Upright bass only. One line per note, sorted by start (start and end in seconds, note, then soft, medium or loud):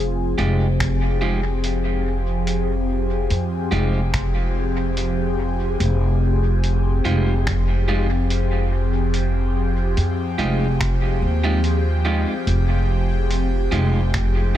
0.00 0.35 F1 medium
0.39 3.27 F1 medium
3.30 3.67 F2 medium
3.72 5.77 F1 medium
5.80 7.02 F1 medium
7.05 9.93 F1 medium
9.97 10.34 F2 medium
10.39 11.22 F1 medium
11.22 12.24 D#2 medium
12.47 13.68 F1 loud
13.72 14.57 F1 medium